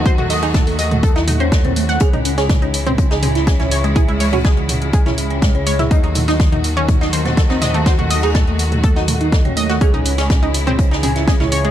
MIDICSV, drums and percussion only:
0, 0, Header, 1, 2, 480
1, 0, Start_track
1, 0, Key_signature, 4, "minor"
1, 0, Tempo, 487805
1, 55, Time_signature, 4, 2, 24, 8
1, 11522, End_track
2, 0, Start_track
2, 0, Title_t, "Drums"
2, 55, Note_on_c, 9, 36, 117
2, 56, Note_on_c, 9, 42, 45
2, 57, Note_off_c, 9, 42, 0
2, 57, Note_on_c, 9, 42, 79
2, 154, Note_off_c, 9, 36, 0
2, 155, Note_off_c, 9, 42, 0
2, 180, Note_on_c, 9, 42, 22
2, 180, Note_on_c, 9, 45, 99
2, 278, Note_off_c, 9, 42, 0
2, 278, Note_off_c, 9, 45, 0
2, 292, Note_on_c, 9, 46, 86
2, 296, Note_off_c, 9, 46, 0
2, 296, Note_on_c, 9, 46, 109
2, 394, Note_off_c, 9, 46, 0
2, 420, Note_on_c, 9, 42, 33
2, 519, Note_off_c, 9, 42, 0
2, 534, Note_on_c, 9, 42, 92
2, 535, Note_off_c, 9, 42, 0
2, 535, Note_on_c, 9, 36, 115
2, 535, Note_on_c, 9, 42, 47
2, 535, Note_on_c, 9, 45, 96
2, 537, Note_on_c, 9, 38, 110
2, 633, Note_off_c, 9, 36, 0
2, 634, Note_off_c, 9, 42, 0
2, 634, Note_off_c, 9, 45, 0
2, 635, Note_off_c, 9, 38, 0
2, 660, Note_on_c, 9, 46, 58
2, 758, Note_off_c, 9, 46, 0
2, 775, Note_on_c, 9, 46, 101
2, 777, Note_on_c, 9, 42, 73
2, 874, Note_off_c, 9, 46, 0
2, 876, Note_off_c, 9, 42, 0
2, 900, Note_on_c, 9, 42, 35
2, 900, Note_on_c, 9, 45, 102
2, 998, Note_off_c, 9, 42, 0
2, 998, Note_off_c, 9, 45, 0
2, 1015, Note_on_c, 9, 36, 116
2, 1015, Note_on_c, 9, 42, 45
2, 1017, Note_off_c, 9, 42, 0
2, 1017, Note_on_c, 9, 42, 84
2, 1113, Note_off_c, 9, 36, 0
2, 1116, Note_off_c, 9, 42, 0
2, 1140, Note_on_c, 9, 42, 24
2, 1143, Note_on_c, 9, 38, 46
2, 1238, Note_off_c, 9, 42, 0
2, 1242, Note_off_c, 9, 38, 0
2, 1255, Note_on_c, 9, 45, 99
2, 1255, Note_on_c, 9, 46, 102
2, 1261, Note_on_c, 9, 42, 69
2, 1354, Note_off_c, 9, 45, 0
2, 1354, Note_off_c, 9, 46, 0
2, 1359, Note_off_c, 9, 42, 0
2, 1380, Note_on_c, 9, 42, 34
2, 1478, Note_off_c, 9, 42, 0
2, 1495, Note_on_c, 9, 36, 115
2, 1495, Note_on_c, 9, 38, 121
2, 1495, Note_on_c, 9, 42, 84
2, 1496, Note_off_c, 9, 42, 0
2, 1496, Note_on_c, 9, 42, 46
2, 1593, Note_off_c, 9, 36, 0
2, 1593, Note_off_c, 9, 38, 0
2, 1594, Note_off_c, 9, 42, 0
2, 1620, Note_on_c, 9, 42, 22
2, 1620, Note_on_c, 9, 45, 96
2, 1719, Note_off_c, 9, 42, 0
2, 1719, Note_off_c, 9, 45, 0
2, 1735, Note_on_c, 9, 46, 103
2, 1738, Note_on_c, 9, 42, 77
2, 1834, Note_off_c, 9, 46, 0
2, 1837, Note_off_c, 9, 42, 0
2, 1860, Note_on_c, 9, 42, 34
2, 1865, Note_on_c, 9, 38, 36
2, 1958, Note_off_c, 9, 42, 0
2, 1963, Note_off_c, 9, 38, 0
2, 1965, Note_on_c, 9, 42, 93
2, 1975, Note_off_c, 9, 42, 0
2, 1975, Note_on_c, 9, 36, 121
2, 1975, Note_on_c, 9, 42, 48
2, 2073, Note_off_c, 9, 36, 0
2, 2074, Note_off_c, 9, 42, 0
2, 2100, Note_on_c, 9, 42, 24
2, 2100, Note_on_c, 9, 45, 97
2, 2199, Note_off_c, 9, 42, 0
2, 2199, Note_off_c, 9, 45, 0
2, 2216, Note_on_c, 9, 42, 69
2, 2216, Note_on_c, 9, 46, 110
2, 2314, Note_off_c, 9, 42, 0
2, 2314, Note_off_c, 9, 46, 0
2, 2340, Note_on_c, 9, 38, 51
2, 2340, Note_on_c, 9, 46, 59
2, 2438, Note_off_c, 9, 46, 0
2, 2439, Note_off_c, 9, 38, 0
2, 2449, Note_on_c, 9, 38, 123
2, 2454, Note_on_c, 9, 42, 86
2, 2455, Note_off_c, 9, 42, 0
2, 2455, Note_on_c, 9, 36, 119
2, 2455, Note_on_c, 9, 42, 46
2, 2455, Note_on_c, 9, 45, 96
2, 2547, Note_off_c, 9, 38, 0
2, 2553, Note_off_c, 9, 36, 0
2, 2554, Note_off_c, 9, 42, 0
2, 2554, Note_off_c, 9, 45, 0
2, 2580, Note_on_c, 9, 42, 23
2, 2678, Note_off_c, 9, 42, 0
2, 2694, Note_on_c, 9, 42, 67
2, 2695, Note_on_c, 9, 46, 106
2, 2792, Note_off_c, 9, 42, 0
2, 2793, Note_off_c, 9, 46, 0
2, 2820, Note_on_c, 9, 42, 36
2, 2820, Note_on_c, 9, 45, 97
2, 2918, Note_off_c, 9, 42, 0
2, 2918, Note_off_c, 9, 45, 0
2, 2935, Note_on_c, 9, 36, 120
2, 2935, Note_on_c, 9, 42, 48
2, 2939, Note_off_c, 9, 42, 0
2, 2939, Note_on_c, 9, 42, 85
2, 3033, Note_off_c, 9, 36, 0
2, 3037, Note_off_c, 9, 42, 0
2, 3056, Note_on_c, 9, 38, 55
2, 3060, Note_on_c, 9, 42, 24
2, 3154, Note_off_c, 9, 38, 0
2, 3158, Note_off_c, 9, 42, 0
2, 3172, Note_on_c, 9, 42, 71
2, 3175, Note_on_c, 9, 45, 96
2, 3175, Note_on_c, 9, 46, 107
2, 3270, Note_off_c, 9, 42, 0
2, 3273, Note_off_c, 9, 45, 0
2, 3273, Note_off_c, 9, 46, 0
2, 3300, Note_on_c, 9, 42, 36
2, 3304, Note_on_c, 9, 38, 42
2, 3398, Note_off_c, 9, 42, 0
2, 3402, Note_off_c, 9, 38, 0
2, 3412, Note_on_c, 9, 42, 93
2, 3415, Note_off_c, 9, 42, 0
2, 3415, Note_on_c, 9, 36, 123
2, 3415, Note_on_c, 9, 42, 47
2, 3417, Note_on_c, 9, 38, 108
2, 3513, Note_off_c, 9, 36, 0
2, 3513, Note_off_c, 9, 42, 0
2, 3515, Note_off_c, 9, 38, 0
2, 3539, Note_on_c, 9, 38, 56
2, 3540, Note_on_c, 9, 42, 24
2, 3540, Note_on_c, 9, 45, 97
2, 3637, Note_off_c, 9, 38, 0
2, 3638, Note_off_c, 9, 42, 0
2, 3638, Note_off_c, 9, 45, 0
2, 3655, Note_on_c, 9, 46, 109
2, 3659, Note_on_c, 9, 42, 65
2, 3753, Note_off_c, 9, 46, 0
2, 3758, Note_off_c, 9, 42, 0
2, 3780, Note_on_c, 9, 42, 35
2, 3878, Note_off_c, 9, 42, 0
2, 3891, Note_on_c, 9, 42, 83
2, 3895, Note_off_c, 9, 42, 0
2, 3895, Note_on_c, 9, 36, 124
2, 3895, Note_on_c, 9, 42, 46
2, 3895, Note_on_c, 9, 45, 91
2, 3993, Note_off_c, 9, 36, 0
2, 3994, Note_off_c, 9, 42, 0
2, 3994, Note_off_c, 9, 45, 0
2, 4020, Note_on_c, 9, 42, 23
2, 4118, Note_off_c, 9, 42, 0
2, 4135, Note_on_c, 9, 46, 113
2, 4136, Note_off_c, 9, 46, 0
2, 4136, Note_on_c, 9, 46, 86
2, 4234, Note_off_c, 9, 46, 0
2, 4260, Note_on_c, 9, 42, 35
2, 4260, Note_on_c, 9, 45, 92
2, 4358, Note_off_c, 9, 42, 0
2, 4358, Note_off_c, 9, 45, 0
2, 4372, Note_on_c, 9, 42, 86
2, 4374, Note_on_c, 9, 38, 125
2, 4375, Note_off_c, 9, 42, 0
2, 4375, Note_on_c, 9, 36, 125
2, 4375, Note_on_c, 9, 42, 46
2, 4472, Note_off_c, 9, 38, 0
2, 4473, Note_off_c, 9, 36, 0
2, 4474, Note_off_c, 9, 42, 0
2, 4500, Note_on_c, 9, 42, 23
2, 4598, Note_off_c, 9, 42, 0
2, 4614, Note_on_c, 9, 42, 65
2, 4616, Note_on_c, 9, 45, 91
2, 4616, Note_on_c, 9, 46, 110
2, 4713, Note_off_c, 9, 42, 0
2, 4714, Note_off_c, 9, 45, 0
2, 4714, Note_off_c, 9, 46, 0
2, 4740, Note_on_c, 9, 42, 36
2, 4838, Note_off_c, 9, 42, 0
2, 4851, Note_on_c, 9, 42, 94
2, 4855, Note_on_c, 9, 36, 125
2, 4856, Note_off_c, 9, 42, 0
2, 4856, Note_on_c, 9, 42, 49
2, 4954, Note_off_c, 9, 36, 0
2, 4954, Note_off_c, 9, 42, 0
2, 4980, Note_on_c, 9, 42, 25
2, 4980, Note_on_c, 9, 45, 100
2, 4981, Note_on_c, 9, 38, 40
2, 5079, Note_off_c, 9, 42, 0
2, 5079, Note_off_c, 9, 45, 0
2, 5080, Note_off_c, 9, 38, 0
2, 5096, Note_on_c, 9, 46, 112
2, 5098, Note_on_c, 9, 42, 68
2, 5194, Note_off_c, 9, 46, 0
2, 5197, Note_off_c, 9, 42, 0
2, 5220, Note_on_c, 9, 42, 35
2, 5319, Note_off_c, 9, 42, 0
2, 5334, Note_on_c, 9, 42, 97
2, 5335, Note_on_c, 9, 36, 125
2, 5336, Note_off_c, 9, 42, 0
2, 5336, Note_on_c, 9, 42, 47
2, 5336, Note_on_c, 9, 45, 94
2, 5337, Note_on_c, 9, 38, 123
2, 5433, Note_off_c, 9, 36, 0
2, 5434, Note_off_c, 9, 42, 0
2, 5434, Note_off_c, 9, 45, 0
2, 5435, Note_off_c, 9, 38, 0
2, 5460, Note_on_c, 9, 42, 23
2, 5559, Note_off_c, 9, 42, 0
2, 5576, Note_on_c, 9, 46, 110
2, 5582, Note_on_c, 9, 42, 65
2, 5674, Note_off_c, 9, 46, 0
2, 5680, Note_off_c, 9, 42, 0
2, 5700, Note_on_c, 9, 38, 36
2, 5700, Note_on_c, 9, 42, 35
2, 5700, Note_on_c, 9, 45, 92
2, 5799, Note_off_c, 9, 38, 0
2, 5799, Note_off_c, 9, 42, 0
2, 5799, Note_off_c, 9, 45, 0
2, 5815, Note_on_c, 9, 36, 125
2, 5815, Note_on_c, 9, 42, 91
2, 5816, Note_off_c, 9, 42, 0
2, 5816, Note_on_c, 9, 42, 44
2, 5914, Note_off_c, 9, 36, 0
2, 5914, Note_off_c, 9, 42, 0
2, 5940, Note_on_c, 9, 42, 23
2, 6039, Note_off_c, 9, 42, 0
2, 6049, Note_on_c, 9, 42, 67
2, 6056, Note_on_c, 9, 45, 96
2, 6056, Note_on_c, 9, 46, 120
2, 6147, Note_off_c, 9, 42, 0
2, 6154, Note_off_c, 9, 45, 0
2, 6154, Note_off_c, 9, 46, 0
2, 6179, Note_on_c, 9, 38, 55
2, 6180, Note_on_c, 9, 46, 61
2, 6277, Note_off_c, 9, 38, 0
2, 6279, Note_off_c, 9, 46, 0
2, 6289, Note_on_c, 9, 38, 115
2, 6295, Note_on_c, 9, 36, 127
2, 6296, Note_on_c, 9, 42, 46
2, 6387, Note_off_c, 9, 38, 0
2, 6394, Note_off_c, 9, 36, 0
2, 6394, Note_off_c, 9, 42, 0
2, 6420, Note_on_c, 9, 42, 23
2, 6420, Note_on_c, 9, 45, 92
2, 6519, Note_off_c, 9, 42, 0
2, 6519, Note_off_c, 9, 45, 0
2, 6536, Note_on_c, 9, 46, 109
2, 6537, Note_on_c, 9, 42, 74
2, 6634, Note_off_c, 9, 46, 0
2, 6636, Note_off_c, 9, 42, 0
2, 6660, Note_on_c, 9, 42, 36
2, 6758, Note_off_c, 9, 42, 0
2, 6775, Note_on_c, 9, 36, 127
2, 6775, Note_on_c, 9, 42, 48
2, 6775, Note_on_c, 9, 45, 95
2, 6780, Note_off_c, 9, 42, 0
2, 6780, Note_on_c, 9, 42, 96
2, 6874, Note_off_c, 9, 36, 0
2, 6874, Note_off_c, 9, 45, 0
2, 6878, Note_off_c, 9, 42, 0
2, 6900, Note_on_c, 9, 42, 23
2, 6902, Note_on_c, 9, 38, 56
2, 6999, Note_off_c, 9, 42, 0
2, 7000, Note_off_c, 9, 38, 0
2, 7015, Note_on_c, 9, 46, 112
2, 7020, Note_on_c, 9, 42, 68
2, 7114, Note_off_c, 9, 46, 0
2, 7119, Note_off_c, 9, 42, 0
2, 7140, Note_on_c, 9, 42, 35
2, 7140, Note_on_c, 9, 45, 90
2, 7142, Note_on_c, 9, 38, 48
2, 7238, Note_off_c, 9, 42, 0
2, 7238, Note_off_c, 9, 45, 0
2, 7241, Note_off_c, 9, 38, 0
2, 7255, Note_on_c, 9, 36, 126
2, 7255, Note_on_c, 9, 42, 91
2, 7256, Note_off_c, 9, 42, 0
2, 7256, Note_on_c, 9, 38, 124
2, 7256, Note_on_c, 9, 42, 46
2, 7354, Note_off_c, 9, 36, 0
2, 7354, Note_off_c, 9, 38, 0
2, 7354, Note_off_c, 9, 42, 0
2, 7377, Note_on_c, 9, 38, 60
2, 7380, Note_on_c, 9, 42, 23
2, 7475, Note_off_c, 9, 38, 0
2, 7478, Note_off_c, 9, 42, 0
2, 7493, Note_on_c, 9, 38, 109
2, 7494, Note_on_c, 9, 42, 73
2, 7496, Note_on_c, 9, 45, 90
2, 7496, Note_on_c, 9, 46, 112
2, 7591, Note_off_c, 9, 38, 0
2, 7593, Note_off_c, 9, 42, 0
2, 7594, Note_off_c, 9, 45, 0
2, 7594, Note_off_c, 9, 46, 0
2, 7620, Note_on_c, 9, 42, 35
2, 7718, Note_off_c, 9, 42, 0
2, 7733, Note_on_c, 9, 38, 106
2, 7735, Note_on_c, 9, 36, 127
2, 7735, Note_on_c, 9, 42, 44
2, 7736, Note_off_c, 9, 42, 0
2, 7736, Note_on_c, 9, 42, 85
2, 7832, Note_off_c, 9, 38, 0
2, 7834, Note_off_c, 9, 36, 0
2, 7834, Note_off_c, 9, 42, 0
2, 7860, Note_on_c, 9, 42, 23
2, 7860, Note_on_c, 9, 45, 92
2, 7958, Note_off_c, 9, 42, 0
2, 7958, Note_off_c, 9, 45, 0
2, 7973, Note_on_c, 9, 46, 79
2, 7975, Note_off_c, 9, 46, 0
2, 7975, Note_on_c, 9, 46, 114
2, 8074, Note_off_c, 9, 46, 0
2, 8100, Note_on_c, 9, 42, 33
2, 8198, Note_off_c, 9, 42, 0
2, 8208, Note_on_c, 9, 38, 124
2, 8214, Note_on_c, 9, 42, 93
2, 8215, Note_off_c, 9, 42, 0
2, 8215, Note_on_c, 9, 36, 120
2, 8215, Note_on_c, 9, 42, 44
2, 8215, Note_on_c, 9, 45, 85
2, 8307, Note_off_c, 9, 38, 0
2, 8314, Note_off_c, 9, 36, 0
2, 8314, Note_off_c, 9, 42, 0
2, 8314, Note_off_c, 9, 45, 0
2, 8340, Note_on_c, 9, 42, 22
2, 8438, Note_off_c, 9, 42, 0
2, 8455, Note_on_c, 9, 46, 114
2, 8456, Note_on_c, 9, 42, 71
2, 8554, Note_off_c, 9, 42, 0
2, 8554, Note_off_c, 9, 46, 0
2, 8580, Note_on_c, 9, 42, 33
2, 8580, Note_on_c, 9, 45, 88
2, 8678, Note_off_c, 9, 42, 0
2, 8678, Note_off_c, 9, 45, 0
2, 8690, Note_on_c, 9, 42, 99
2, 8695, Note_on_c, 9, 36, 126
2, 8696, Note_off_c, 9, 42, 0
2, 8696, Note_on_c, 9, 42, 45
2, 8794, Note_off_c, 9, 36, 0
2, 8794, Note_off_c, 9, 42, 0
2, 8820, Note_on_c, 9, 42, 23
2, 8821, Note_on_c, 9, 38, 48
2, 8918, Note_off_c, 9, 42, 0
2, 8919, Note_off_c, 9, 38, 0
2, 8931, Note_on_c, 9, 42, 76
2, 8936, Note_on_c, 9, 45, 89
2, 8936, Note_on_c, 9, 46, 113
2, 9029, Note_off_c, 9, 42, 0
2, 9034, Note_off_c, 9, 45, 0
2, 9034, Note_off_c, 9, 46, 0
2, 9060, Note_on_c, 9, 42, 34
2, 9158, Note_off_c, 9, 42, 0
2, 9175, Note_on_c, 9, 36, 126
2, 9175, Note_on_c, 9, 38, 110
2, 9175, Note_on_c, 9, 42, 45
2, 9177, Note_off_c, 9, 42, 0
2, 9177, Note_on_c, 9, 42, 79
2, 9273, Note_off_c, 9, 36, 0
2, 9273, Note_off_c, 9, 38, 0
2, 9275, Note_off_c, 9, 42, 0
2, 9300, Note_on_c, 9, 42, 22
2, 9300, Note_on_c, 9, 45, 88
2, 9398, Note_off_c, 9, 42, 0
2, 9398, Note_off_c, 9, 45, 0
2, 9415, Note_on_c, 9, 46, 110
2, 9417, Note_on_c, 9, 42, 66
2, 9514, Note_off_c, 9, 46, 0
2, 9516, Note_off_c, 9, 42, 0
2, 9537, Note_on_c, 9, 38, 40
2, 9540, Note_on_c, 9, 42, 33
2, 9636, Note_off_c, 9, 38, 0
2, 9638, Note_off_c, 9, 42, 0
2, 9652, Note_on_c, 9, 42, 91
2, 9655, Note_off_c, 9, 42, 0
2, 9655, Note_on_c, 9, 36, 123
2, 9655, Note_on_c, 9, 42, 43
2, 9753, Note_off_c, 9, 36, 0
2, 9754, Note_off_c, 9, 42, 0
2, 9780, Note_on_c, 9, 42, 22
2, 9780, Note_on_c, 9, 45, 86
2, 9879, Note_off_c, 9, 42, 0
2, 9879, Note_off_c, 9, 45, 0
2, 9890, Note_on_c, 9, 42, 70
2, 9895, Note_on_c, 9, 46, 109
2, 9988, Note_off_c, 9, 42, 0
2, 9994, Note_off_c, 9, 46, 0
2, 10019, Note_on_c, 9, 38, 55
2, 10020, Note_on_c, 9, 46, 60
2, 10117, Note_off_c, 9, 38, 0
2, 10118, Note_off_c, 9, 46, 0
2, 10135, Note_on_c, 9, 36, 120
2, 10135, Note_on_c, 9, 42, 43
2, 10135, Note_on_c, 9, 45, 90
2, 10136, Note_off_c, 9, 42, 0
2, 10136, Note_on_c, 9, 42, 93
2, 10138, Note_on_c, 9, 38, 126
2, 10233, Note_off_c, 9, 36, 0
2, 10234, Note_off_c, 9, 42, 0
2, 10234, Note_off_c, 9, 45, 0
2, 10237, Note_off_c, 9, 38, 0
2, 10260, Note_on_c, 9, 42, 22
2, 10358, Note_off_c, 9, 42, 0
2, 10375, Note_on_c, 9, 42, 73
2, 10375, Note_on_c, 9, 46, 110
2, 10473, Note_off_c, 9, 42, 0
2, 10474, Note_off_c, 9, 46, 0
2, 10500, Note_on_c, 9, 42, 33
2, 10500, Note_on_c, 9, 45, 91
2, 10598, Note_off_c, 9, 42, 0
2, 10598, Note_off_c, 9, 45, 0
2, 10615, Note_on_c, 9, 36, 119
2, 10615, Note_on_c, 9, 42, 45
2, 10616, Note_off_c, 9, 42, 0
2, 10616, Note_on_c, 9, 42, 88
2, 10713, Note_off_c, 9, 36, 0
2, 10715, Note_off_c, 9, 42, 0
2, 10740, Note_on_c, 9, 42, 22
2, 10747, Note_on_c, 9, 38, 61
2, 10838, Note_off_c, 9, 42, 0
2, 10846, Note_off_c, 9, 38, 0
2, 10855, Note_on_c, 9, 45, 91
2, 10855, Note_on_c, 9, 46, 107
2, 10858, Note_on_c, 9, 42, 65
2, 10953, Note_off_c, 9, 45, 0
2, 10953, Note_off_c, 9, 46, 0
2, 10956, Note_off_c, 9, 42, 0
2, 10977, Note_on_c, 9, 38, 43
2, 10980, Note_on_c, 9, 42, 33
2, 11075, Note_off_c, 9, 38, 0
2, 11078, Note_off_c, 9, 42, 0
2, 11095, Note_on_c, 9, 36, 121
2, 11095, Note_on_c, 9, 38, 113
2, 11095, Note_on_c, 9, 42, 43
2, 11098, Note_off_c, 9, 42, 0
2, 11098, Note_on_c, 9, 42, 95
2, 11193, Note_off_c, 9, 36, 0
2, 11193, Note_off_c, 9, 38, 0
2, 11196, Note_off_c, 9, 42, 0
2, 11218, Note_on_c, 9, 38, 57
2, 11220, Note_on_c, 9, 42, 22
2, 11220, Note_on_c, 9, 45, 91
2, 11317, Note_off_c, 9, 38, 0
2, 11318, Note_off_c, 9, 42, 0
2, 11318, Note_off_c, 9, 45, 0
2, 11335, Note_on_c, 9, 46, 104
2, 11336, Note_on_c, 9, 42, 69
2, 11433, Note_off_c, 9, 46, 0
2, 11434, Note_off_c, 9, 42, 0
2, 11459, Note_on_c, 9, 42, 32
2, 11522, Note_off_c, 9, 42, 0
2, 11522, End_track
0, 0, End_of_file